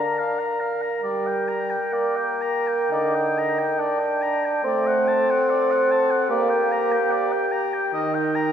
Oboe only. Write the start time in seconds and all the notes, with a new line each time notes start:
Already playing: A#5
0.19 F5
0.39 A#5
0.60 F5
0.82 A#5
1.03 D5
1.27 G5
1.48 A#5
1.70 G5
1.93 D5
2.16 G5
2.42 A#5
2.68 G5
2.92 D5
3.15 G5
3.38 A#5
3.59 G5
3.80 D5
4.00 G5
4.22 A#5
4.46 G5
4.67 D5
4.87 F#5
5.08 A5
5.30 F#5
5.50 D5
5.71 F#5
5.91 A5
6.11 F#5
6.30 D5
6.50 G5
6.72 A#5
6.92 G5
7.12 D5
7.32 G5
7.52 A#5
7.74 G5
7.94 D#5
8.14 G5
8.35 A#5